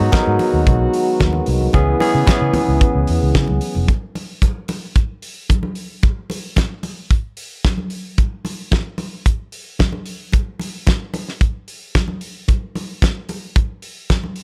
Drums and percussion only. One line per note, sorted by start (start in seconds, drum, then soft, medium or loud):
0.12 kick loud
0.12 snare loud
0.12 closed hi-hat medium
0.12 high conga medium
0.39 open hi-hat medium
0.39 muted conga medium
0.67 kick loud
0.67 closed hi-hat medium
0.67 muted conga soft
0.67 low conga medium
0.93 open hi-hat medium
1.20 kick loud
1.20 snare medium
1.20 closed hi-hat medium
1.20 high conga medium
1.33 high conga medium
1.46 open hi-hat medium
1.61 high conga medium
1.73 kick loud
1.73 closed hi-hat medium
1.73 muted conga medium
2.00 open hi-hat medium
2.00 muted conga medium
2.27 kick loud
2.27 snare loud
2.27 closed hi-hat medium
2.27 high conga medium
2.54 open hi-hat medium
2.54 muted conga medium
2.54 low conga medium
2.81 kick loud
2.81 closed hi-hat medium
2.81 muted conga soft
3.07 open hi-hat medium
3.35 kick loud
3.35 snare loud
3.35 closed hi-hat medium
3.35 high conga medium
3.47 high conga medium
3.61 open hi-hat medium
3.75 high conga medium
3.88 kick loud
3.88 closed hi-hat soft
3.88 muted conga soft
4.15 open hi-hat medium
4.15 muted conga soft
4.42 kick loud
4.42 closed hi-hat medium
4.42 high conga medium
4.68 open hi-hat medium
4.68 muted conga medium
4.96 kick loud
4.96 closed hi-hat medium
4.96 muted conga soft
5.22 open hi-hat medium
5.49 kick loud
5.49 closed hi-hat soft
5.49 high conga medium
5.63 high conga medium
5.75 open hi-hat medium
6.03 kick loud
6.03 closed hi-hat soft
6.03 muted conga medium
6.30 open hi-hat medium
6.30 muted conga medium
6.56 kick loud
6.56 snare loud
6.56 closed hi-hat medium
6.56 high conga medium
6.83 open hi-hat soft
6.83 muted conga medium
7.11 kick loud
7.11 closed hi-hat medium
7.37 open hi-hat medium
7.65 kick loud
7.65 snare medium
7.65 closed hi-hat soft
7.65 high conga medium
7.77 high conga medium
7.90 open hi-hat medium
8.18 kick loud
8.18 closed hi-hat medium
8.18 muted conga medium
8.45 open hi-hat medium
8.45 muted conga medium
8.71 kick loud
8.71 snare medium
8.71 closed hi-hat medium
8.71 high conga medium
8.98 open hi-hat medium
8.98 muted conga medium
9.26 kick loud
9.26 closed hi-hat medium
9.26 muted conga soft
9.52 open hi-hat medium
9.79 kick loud
9.79 snare loud
9.79 closed hi-hat medium
9.79 high conga medium
9.93 high conga medium
10.06 open hi-hat medium
10.32 kick medium
10.32 closed hi-hat medium
10.32 muted conga soft
10.59 open hi-hat medium
10.59 muted conga medium
10.87 kick loud
10.87 snare medium
10.87 closed hi-hat medium
10.87 high conga medium
11.14 open hi-hat medium
11.14 muted conga medium
11.28 snare soft
11.41 kick loud
11.41 closed hi-hat medium
11.41 muted conga soft
11.68 open hi-hat medium
11.95 kick loud
11.95 snare loud
11.95 closed hi-hat medium
11.95 high conga medium
12.08 high conga medium
12.21 open hi-hat medium
12.48 kick loud
12.48 closed hi-hat medium
12.48 muted conga soft
12.75 open hi-hat medium
12.75 muted conga medium
13.02 kick loud
13.02 snare medium
13.02 closed hi-hat medium
13.02 high conga medium
13.29 open hi-hat medium
13.29 muted conga medium
13.56 kick loud
13.56 closed hi-hat medium
13.56 muted conga soft
13.82 open hi-hat medium
14.10 kick loud
14.10 snare loud
14.10 closed hi-hat medium
14.10 high conga medium
14.23 high conga medium
14.36 open hi-hat medium